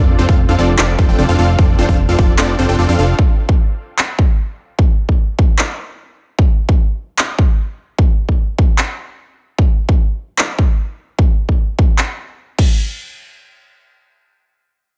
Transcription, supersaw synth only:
0.00 0.16 C4 medium
0.00 0.16 D4 medium
0.00 0.16 F4 medium
0.00 0.16 A4 medium
0.00 0.16 D5 medium
0.19 0.26 C4 medium
0.19 0.26 D4 medium
0.19 0.26 F4 medium
0.19 0.26 A4 medium
0.19 0.26 C5 medium
0.29 0.37 C4 loud
0.29 0.37 F4 medium
0.29 0.37 A4 medium
0.29 0.37 F5 loud
0.49 0.56 C4 medium
0.49 0.56 D4 medium
0.49 0.56 F4 medium
0.49 0.56 A4 medium
0.49 0.56 F5 medium
0.59 0.72 C4 medium
0.59 0.72 D4 medium
0.59 0.72 F4 medium
0.59 0.72 A4 medium
0.59 0.72 D5 loud
0.79 0.96 C4 medium
0.79 0.96 D4 medium
0.79 0.96 F4 medium
0.79 0.96 A4 medium
0.79 0.96 D5 loud
0.99 1.06 C4 medium
0.99 1.06 D4 medium
0.99 1.06 F4 medium
0.99 1.06 A4 medium
0.99 1.06 C5 loud
1.09 1.16 C4 medium
1.09 1.16 D4 medium
1.09 1.16 F4 medium
1.09 1.16 A4 medium
1.09 1.16 G5 medium
1.19 1.27 C4 medium
1.19 1.27 D4 medium
1.19 1.27 F4 medium
1.19 1.27 A4 medium
1.19 1.27 D5 medium
1.29 1.36 C4 medium
1.29 1.36 D4 medium
1.29 1.36 F4 medium
1.29 1.36 A4 medium
1.29 1.36 F5 loud
1.39 1.56 C4 medium
1.39 1.56 D4 medium
1.39 1.56 F4 medium
1.39 1.56 A4 medium
1.39 1.56 F5 medium
1.59 1.76 C4 medium
1.59 1.76 D4 medium
1.59 1.76 F4 medium
1.59 1.76 A4 medium
1.59 1.76 D5 medium
1.79 1.86 C4 medium
1.79 1.86 D4 medium
1.79 1.86 F4 medium
1.79 1.86 A4 medium
1.79 1.86 C5 loud
1.89 1.97 C4 loud
1.89 1.97 D4 medium
1.89 1.97 F4 medium
1.89 1.97 A4 medium
1.89 1.97 F5 loud
2.09 2.16 C4 medium
2.09 2.16 D4 medium
2.09 2.16 F4 medium
2.09 2.16 A4 medium
2.09 2.16 F5 medium
2.19 2.32 C4 medium
2.19 2.32 D4 medium
2.19 2.32 F4 medium
2.19 2.32 D5 loud
2.39 2.56 C4 medium
2.39 2.56 D4 medium
2.39 2.56 F4 medium
2.39 2.56 A4 medium
2.39 2.56 D5 loud
2.59 2.66 C4 medium
2.59 2.66 D4 medium
2.59 2.66 F4 medium
2.59 2.66 A4 medium
2.59 2.66 C5 medium
2.69 2.76 C4 medium
2.69 2.76 D4 medium
2.69 2.76 F4 medium
2.69 2.76 A4 medium
2.69 2.76 G5 medium
2.79 2.87 C4 medium
2.79 2.87 D4 medium
2.79 2.87 F4 medium
2.79 2.87 A4 medium
2.79 2.87 D5 medium
2.89 2.96 C4 medium
2.89 2.96 D4 medium
2.89 2.96 F4 medium
2.89 2.96 A4 medium
2.89 2.96 F5 loud
2.99 3.16 C4 medium
2.99 3.16 D4 medium
2.99 3.16 F4 medium
2.99 3.16 A4 medium
2.99 3.16 F5 medium

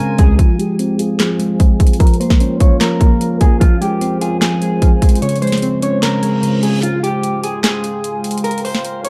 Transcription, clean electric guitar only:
0.00 0.15 A#4 medium
0.19 0.34 G#4 medium
0.39 0.54 F4 medium
0.59 0.97 G4 medium
0.99 1.15 G#4 medium
1.19 1.96 G#4 medium
2.00 2.15 A#4 medium
2.20 2.58 C5 medium
2.60 2.76 C#5 medium
2.80 3.37 A#4 medium
3.41 3.56 G#4 medium
3.61 3.76 F4 medium
3.82 4.19 G4 medium
4.21 4.37 G#4 medium
4.41 5.18 G#4 medium
5.22 5.37 C#5 medium
5.42 5.80 C5 medium
5.83 5.98 C#5 medium
6.03 6.60 A#4 medium
6.63 6.78 G#4 medium
6.83 6.98 F4 medium
7.03 7.41 G4 medium
7.44 7.59 G#4 medium
7.64 8.40 G#4 medium
8.44 8.59 A#4 medium
8.65 9.02 C5 medium
9.05 9.09 C#5 medium

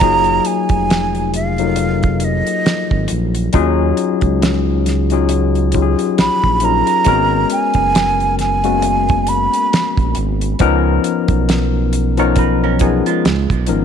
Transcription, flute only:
0.00 0.48 A#5 loud
0.47 1.34 G#5 medium
1.35 2.26 F5 medium
2.24 3.11 D#5 medium
6.20 6.66 B5 loud
6.64 7.51 A#5 loud
7.52 8.36 G#5 loud
8.40 9.30 G#5 medium
9.29 10.16 B5 medium

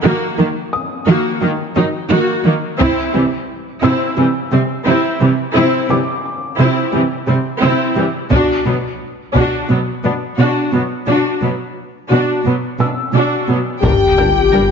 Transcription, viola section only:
0.04 0.36 A#3 medium
0.04 0.36 F#4 medium
0.39 0.47 D#3 soft
0.39 0.47 A#3 soft
1.08 1.40 A#3 medium
1.08 1.40 F#4 medium
1.42 1.50 D#3 soft
1.42 1.50 A#3 soft
1.77 1.85 F#3 soft
1.77 1.85 D#4 medium
2.11 2.43 A#3 medium
2.11 2.43 F#4 medium
2.45 2.53 D#3 medium
2.45 2.54 A#3 medium
2.80 3.12 C4 medium
2.80 3.12 E4 medium
3.14 3.22 E3 soft
3.14 3.22 G3 soft
3.83 4.15 C4 medium
3.83 4.15 E4 medium
4.17 4.25 E3 medium
4.17 4.25 G3 medium
4.52 4.60 G3 soft
4.52 4.60 C4 soft
4.86 5.19 C4 medium
4.86 5.19 E4 medium
5.21 5.29 E3 medium
5.21 5.29 G3 soft
5.55 5.87 C4 medium
5.55 5.88 E4 medium
5.90 5.98 E3 soft
5.90 5.98 G3 soft
6.59 6.91 C4 soft
6.59 6.91 E4 medium
6.93 7.01 E3 medium
6.93 7.01 G3 soft
7.27 7.35 G3 soft
7.27 7.36 C4 soft
7.62 7.94 C4 medium
7.62 7.94 E4 medium
7.97 8.05 E3 soft
7.97 8.05 G3 soft
8.32 8.64 D4 medium
8.32 8.64 F#4 soft
8.67 8.75 F#3 soft
8.67 8.75 B3 soft
9.35 9.67 D4 soft
9.35 9.67 F#4 soft
9.71 9.79 F#3 soft
9.71 9.79 B3 soft
10.04 10.12 B3 soft
10.04 10.12 D4 soft
10.39 10.71 D4 soft
10.39 10.71 F#4 soft
10.73 10.81 F#3 soft
10.73 10.81 B3 soft
11.08 11.40 D4 soft
11.08 11.40 F#4 soft
11.43 11.51 F#3 soft
11.43 11.51 B3 soft
12.10 12.43 D4 soft
12.10 12.43 F#4 soft
12.46 12.54 F#3 soft
12.46 12.54 B3 soft
12.81 12.89 B3 soft
12.81 12.89 D4 soft
13.15 13.47 D4 soft
13.15 13.47 F#4 soft
13.49 13.57 F#3 soft
13.49 13.57 B3 soft
13.84 13.92 G3 soft
13.84 13.92 D4 soft
14.18 14.26 G3 soft
14.18 14.26 D4 soft
14.53 14.61 G3 soft
14.53 14.61 D4 soft

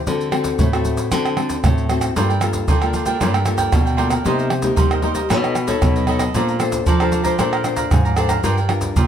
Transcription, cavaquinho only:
2.16 2.28 F4 medium
2.16 2.29 A#4 medium
2.16 2.29 D5 medium
2.16 2.28 G5 medium
2.29 2.41 A#4 soft
2.29 2.41 D5 soft
2.29 2.42 G5 medium
2.42 muted cavaquinho stroke soft
2.68 2.81 F4 medium
2.68 2.81 A#4 medium
2.68 2.82 D5 medium
2.68 2.82 G5 medium
2.83 2.94 A#4 soft
2.83 2.94 D5 soft
2.83 2.94 G5 soft
2.94 3.06 F4 medium
2.94 3.07 A#4 medium
2.94 3.07 D5 medium
2.94 3.05 G5 medium
3.06 3.20 A#4 medium
3.06 3.20 D5 medium
3.06 3.19 G5 medium
3.20 3.33 F4 medium
3.20 3.33 A#4 medium
3.20 3.34 D5 medium
3.20 3.33 G5 medium
3.34 3.45 A#4 soft
3.34 3.45 D5 soft
3.34 3.45 G5 soft
3.46 muted cavaquinho stroke soft
3.58 3.85 A#4 medium
3.58 3.85 D5 medium
3.58 3.84 G5 medium
3.86 3.96 A#4 soft
3.86 3.98 D5 soft
3.86 3.98 G5 medium
3.97 4.10 F4 medium
3.97 4.10 A#4 medium
3.97 4.09 D5 medium
3.97 4.08 G5 medium
4.09 4.24 A#4 soft
4.09 4.23 D5 soft
4.09 4.23 G5 medium
4.24 4.37 D#4 medium
4.24 4.37 A#4 medium
4.24 4.38 C5 medium
4.24 4.38 D#5 medium
4.39 4.50 A#4 soft
4.39 4.50 C5 soft
4.39 4.50 D#5 soft
4.50 muted cavaquinho stroke soft
4.76 4.89 D#4 medium
4.76 4.90 A#4 medium
4.76 4.90 C5 medium
4.76 4.90 D#5 medium
4.91 5.03 A#4 soft
4.91 5.03 C5 medium
4.91 5.03 D#5 soft
5.03 5.16 D#4 medium
5.03 5.15 A#4 medium
5.03 5.15 C5 medium
5.03 5.13 D#5 medium
5.15 5.29 A#4 medium
5.15 5.29 C5 medium
5.15 5.28 D#5 medium
5.29 5.42 D#4 medium
5.29 5.42 A4 medium
5.29 5.42 B4 medium
5.29 5.42 D#5 medium
5.43 5.54 A4 soft
5.43 5.54 B4 soft
5.43 5.54 D#5 medium
5.55 muted cavaquinho stroke soft
5.67 5.95 A4 medium
5.67 5.94 B4 medium
5.67 5.93 D#5 medium
5.96 6.07 A4 soft
5.96 6.08 B4 soft
5.96 6.08 D#5 soft
6.08 6.20 D#4 medium
6.08 6.20 A4 medium
6.08 6.19 B4 medium
6.08 6.18 D#5 medium
6.19 6.34 A4 soft
6.19 6.33 B4 soft
6.19 6.32 D#5 medium
6.35 6.47 A4 medium
6.35 6.47 D5 medium
6.35 6.48 F5 medium
6.35 6.47 A#5 medium
6.49 6.60 D5 soft
6.49 6.60 F5 soft
6.49 6.60 A#5 medium
6.61 muted cavaquinho stroke soft
6.87 6.99 A4 medium
6.87 7.00 D5 medium
6.87 7.00 F5 medium
6.87 7.00 A#5 medium
7.01 7.11 D5 soft
7.01 7.12 F5 soft
7.01 7.13 A#5 medium
7.12 7.25 A4 medium
7.12 7.25 D5 medium
7.12 7.24 F5 medium
7.12 7.22 A#5 medium
7.24 7.38 D5 medium
7.24 7.38 F5 medium
7.24 7.37 A#5 medium
7.39 7.51 A4 medium
7.39 7.52 D5 medium
7.39 7.52 F5 medium
7.39 7.51 A#5 medium
7.52 7.64 D5 soft
7.52 7.64 F5 soft
7.52 7.64 A#5 medium
7.64 muted cavaquinho stroke soft
7.76 8.04 D5 medium
7.76 8.03 F5 medium
7.76 8.03 A#5 medium
8.05 8.16 D5 soft
8.05 8.17 F5 medium
8.05 8.17 A#5 soft
8.16 8.29 A4 medium
8.16 8.30 D5 medium
8.16 8.29 F5 medium
8.16 8.27 A#5 medium
8.29 8.43 D5 soft
8.29 8.43 F5 soft
8.29 8.42 A#5 medium
8.43 8.56 F4 medium
8.43 8.57 A#4 medium
8.43 8.57 D5 medium
8.43 8.56 G5 medium
8.58 8.69 A#4 soft
8.58 8.69 D5 soft
8.58 8.70 G5 medium
8.70 muted cavaquinho stroke soft
8.96 9.07 F4 medium
8.96 9.07 A#4 medium
8.96 9.07 D5 medium
8.96 9.07 G5 medium

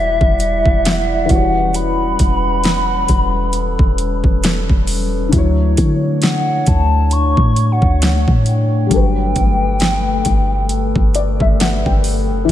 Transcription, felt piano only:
0.00 1.24 E3 medium
0.00 1.25 E4 medium
0.00 1.26 F#4 medium
0.00 1.27 G4 medium
0.00 1.28 D5 loud
1.25 4.82 E3 medium
1.25 4.83 E4 medium
1.25 4.84 F#4 medium
1.31 4.85 G4 medium
1.31 4.86 B4 medium
1.31 4.87 C#5 medium
5.28 8.85 D3 medium
5.28 8.86 D4 medium
5.33 8.88 F#3 medium
5.33 8.87 E4 medium
5.38 8.89 C#5 medium
8.86 12.43 G3 medium
8.86 12.44 D4 medium
8.91 12.45 F#3 medium
8.91 12.46 A4 medium
8.96 12.48 B4 medium
11.15 11.39 D5 medium
11.41 11.59 E5 medium
11.60 11.84 F#5 medium
11.86 12.45 G5 medium
12.45 12.52 E3 medium
12.45 12.52 E4 medium

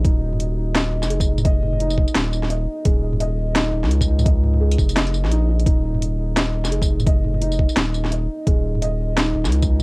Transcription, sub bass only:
0.05 1.04 D#1 loud
1.03 2.07 F1 medium
2.15 2.67 D#1 loud
2.85 3.72 D#1 medium
3.73 3.84 D#1 medium
3.83 4.77 C#2 medium
4.78 5.15 F1 loud
5.14 5.25 F#1 loud
5.24 5.65 A#1 medium
5.66 6.66 D#1 medium
6.64 7.68 F1 medium
7.76 8.28 D#1 loud
8.47 9.34 D#1 loud
9.35 9.46 D#1 medium
9.45 9.83 C#2 medium

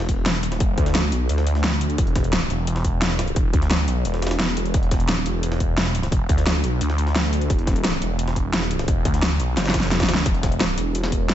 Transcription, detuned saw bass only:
0.09 0.59 E1 loud
0.60 0.76 E1 loud
0.78 1.11 D2 loud
1.12 1.28 B1 loud
1.29 1.97 D2 loud
1.98 2.49 E1 loud
2.50 2.83 E1 loud
2.85 3.35 E1 loud
3.36 3.52 E1 loud
3.54 3.87 D2 loud
3.88 4.04 B1 loud
4.05 4.56 E1 loud
4.57 4.73 E1 medium
4.74 5.25 E1 medium
5.26 5.59 E1 loud
5.60 6.11 E1 loud
6.12 6.28 E1 loud
6.29 6.62 D2 loud
6.64 6.80 B1 medium
6.81 7.49 D2 loud
7.50 8.00 E1 loud
8.02 8.35 E1 loud
8.36 8.87 E1 loud
8.88 9.04 E1 loud
9.05 9.38 D2 loud
9.40 9.56 B1 loud
9.57 9.90 F#1 loud
9.91 10.07 E1 loud
10.09 10.25 D2 loud
10.26 10.76 E1 loud
10.78 11.11 E1 loud
11.12 11.34 E1 medium

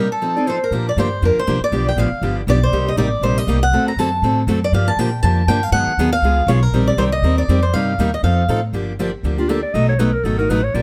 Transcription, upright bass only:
0.71 0.96 A#2 medium
0.97 1.21 G2 medium
1.22 1.35 F2 medium
1.37 muted upright bass stroke soft
1.48 1.60 C2 medium
1.60 muted upright bass stroke soft
1.71 1.96 B1 medium
1.97 2.10 A1 medium
2.12 muted upright bass stroke soft
2.22 2.46 G1 medium
2.47 2.71 B1 loud
2.72 2.96 C2 medium
2.96 3.21 A1 medium
3.21 3.46 A#1 medium
3.47 3.71 C2 medium
3.72 3.96 D2 medium
3.96 4.21 F#2 medium
4.22 4.46 A2 medium
4.47 4.72 F#2 medium
4.72 4.96 G2 medium
4.97 5.21 A#2 medium
5.23 5.47 F2 medium
5.47 5.71 G2 medium
5.72 5.86 G#2 medium
5.87 muted upright bass stroke soft
5.97 6.21 D#2 medium
6.22 6.46 C#2 medium
6.47 6.71 B1 loud
6.72 6.96 A#1 medium
6.97 7.22 C2 medium
7.22 7.47 D#2 medium
7.48 7.73 F2 loud
7.74 7.98 G2 medium
7.98 8.23 D#2 medium
8.23 8.48 F2 medium
8.48 8.72 A2 medium
8.73 9.13 G1 medium
9.23 9.64 D2 medium
9.74 10.14 B1 medium
10.24 10.45 G#1 medium
10.49 10.71 A1 medium
10.74 10.82 A#1 medium

